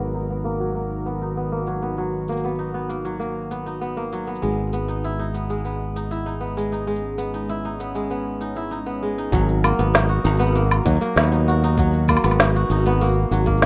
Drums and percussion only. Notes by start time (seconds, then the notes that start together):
0.01 shaker
0.15 shaker
0.45 shaker
0.61 shaker
0.76 shaker
1.06 shaker
1.22 shaker
1.37 shaker
1.67 shaker
1.82 shaker
1.97 shaker
2.28 shaker
2.32 shaker
2.37 shaker
2.40 shaker
2.48 shaker
2.51 shaker
2.55 shaker
2.58 shaker
2.90 shaker
3.05 shaker
3.21 shaker
3.51 shaker
3.67 shaker
3.82 shaker
4.12 shaker
4.35 shaker
4.43 shaker
4.73 shaker
4.89 shaker
5.04 shaker
5.35 shaker
5.50 shaker
5.66 shaker
5.96 shaker
6.12 shaker
6.27 shaker
6.58 shaker
6.73 shaker
6.96 shaker
7.18 shaker
7.34 shaker
7.49 shaker
7.80 shaker
7.95 shaker
8.10 shaker
8.41 shaker
8.56 shaker
8.72 shaker
9.19 shaker
9.32 kick, open hi-hat, shaker
9.49 shaker
9.64 low woodblock, shaker
9.79 open hi-hat, shaker
9.95 snare, open hi-hat, shaker
10.11 shaker
10.25 shaker
10.41 open hi-hat, shaker
10.56 open hi-hat, shaker
10.71 low woodblock
10.86 kick, shaker
11.02 open hi-hat, shaker
11.17 snare, open hi-hat, shaker
11.33 shaker
11.49 shaker
11.64 open hi-hat, shaker
11.78 kick, open hi-hat, shaker
11.94 shaker
12.08 kick, low woodblock, shaker
12.17 low woodblock
12.24 open hi-hat, low woodblock, shaker
12.31 low woodblock
12.40 snare, open hi-hat, shaker
12.55 shaker
12.70 shaker
12.86 open hi-hat, shaker
13.01 open hi-hat, shaker
13.04 shaker
13.06 shaker
13.09 shaker
13.11 shaker
13.14 shaker
13.32 shaker
13.46 kick, open hi-hat, shaker
13.58 shaker
13.62 snare, open hi-hat, shaker